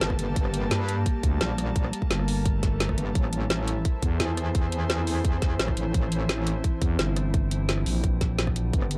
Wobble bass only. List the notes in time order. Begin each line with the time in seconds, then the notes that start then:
0.01 G1
0.19 G1
0.36 G1
0.71 G2
1.41 A#1
2.98 G1
3.15 A1
3.50 A1
4.20 E2
5.59 A1
5.77 A1
5.94 A1
6.29 A1
8.73 G1